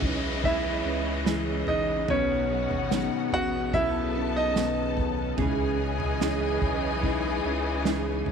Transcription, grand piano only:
0.45 E4 E5
1.68 D#4 D#5
2.10 C#4 C#5
3.34 F#4 F#5
3.74 E4 E5
4.36 D#4 D#5

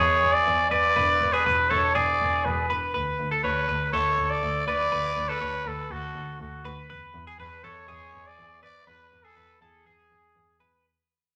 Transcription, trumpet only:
Already playing: C#5
0.33 D5
0.71 D5
1.33 B4
1.70 C#5
1.95 D5
2.45 B4
3.44 B4
3.93 C#5
4.30 D5
4.68 D5
5.29 B4
5.68 A4
5.92 F#4
6.41 F#4
7.40 B4
7.64 C#5
8.27 D5
8.64 D5
8.88 B4
9.25 A4
9.63 G#4

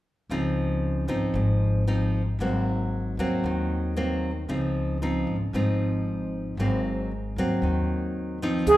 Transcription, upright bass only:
0.30 C#2
1.08 G#1
1.34 G#1
2.39 G#1
3.17 D#2
3.44 D#2
4.48 C#2
5.27 G#1
5.53 G#1
6.57 G#1
7.36 D#2
7.62 D#2
8.66 C#2

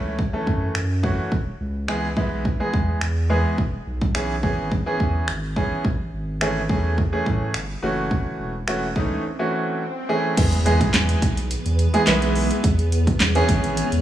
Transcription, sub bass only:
Already playing: C#2
0.47 F#2
0.75 F#2
1.32 E1
1.60 C#2
2.17 B1
2.73 E2
3.02 E2
3.58 E1
3.87 B1
4.43 G#1
5.00 E2
5.28 G#1
5.85 A1
6.13 G#1
6.69 E2
7.26 A2
7.54 G1
7.83 F#1
8.39 E1
8.96 C#2
10.37 E2
10.94 E2
11.22 B1
11.66 E2
12.07 B1
12.64 E2
13.20 E2
13.49 G#1
13.92 E2

